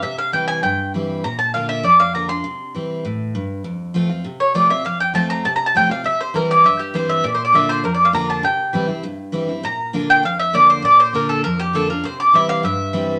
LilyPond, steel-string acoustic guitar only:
\new Staff \with { instrumentName = "Steel-string acoustic guitar" } { \time 4/4 \key c \mixolydian \tempo 4 = 200 << { r4 <e g c' e'>4 r4 <e g c' e'>4 | r4 <d bes d' f'>4 r4 <d bes d' f'>8 <d' f'>8 | r4 <e g c' e'>4 r2 | r4 <f a c' f'>8 <c' f'>8 r4 <f a c' f'>8 <c' f'>8 |
r4 <f a c' f'>4 r4 <f a c' f'>8 <c' f'>8 | r4 <e g c' e'>4 r4 <e g c' e'>4 | r4 <d bes d' f'>4 r4 <d bes d' f'>4 | r4 <e g c' e'>8 <c' e'>8 r4 <e g c' e'>8 <c' e'>8 |
r4 <d bes d' f'>4 r4 <d bes d' f'>4 | r4 <d bes d' f'>4 r4 <d bes d' f'>8 <d' f'>8 | r4 <e g c' e'>4 r4 <e g c' e'>4 | } \\ { c2 g,2 | bes,2 f,2 | c2 a,4 g,4 | f,2 c2 |
f,2 c2 | c2 g,2 | bes,2 f,2 | c2 g,2 |
bes,2 f,2 | bes,2 f,2 | c2 g,2 | } >> }